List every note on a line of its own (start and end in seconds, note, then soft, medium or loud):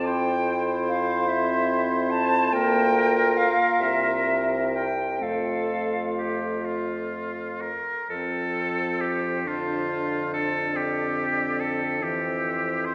0.00 2.49 F2 medium
0.00 1.28 C4 medium
0.00 2.48 E4 medium
0.06 2.49 C5 loud
0.06 0.63 G5 loud
0.88 1.29 F5 loud
1.28 2.50 C4 medium
1.28 2.11 E5 medium
2.10 2.54 A5 loud
2.52 3.50 D2 medium
2.52 3.50 A#3 medium
2.52 4.86 F4 medium
2.52 4.87 A#4 loud
2.52 3.38 G5 loud
3.37 3.82 F5 loud
3.79 5.17 C2 medium
3.79 5.17 C4 medium
3.79 4.73 E5 loud
4.74 5.24 G5 medium
5.21 7.71 F2 medium
5.21 7.71 A3 medium
5.21 7.71 F4 medium
5.21 6.13 A4 medium
5.21 6.64 F5 medium
6.18 6.66 G4 medium
6.64 7.62 F4 medium
7.61 8.09 A#4 medium
8.09 12.95 F2 medium
8.09 9.47 F3 medium
8.09 9.40 C4 medium
8.09 9.03 A4 medium
8.09 10.75 C5 medium
9.01 9.48 G4 medium
9.45 12.03 D3 medium
9.45 10.71 D4 medium
9.45 10.31 F4 medium
10.33 10.78 A4 medium
10.73 11.97 C4 medium
10.73 11.62 G4 medium
10.73 12.02 D5 medium
11.60 12.04 A4 medium
12.00 12.95 E3 medium
12.00 12.95 C4 medium
12.00 12.87 G4 medium
12.00 12.95 C5 medium
12.85 12.95 C5 loud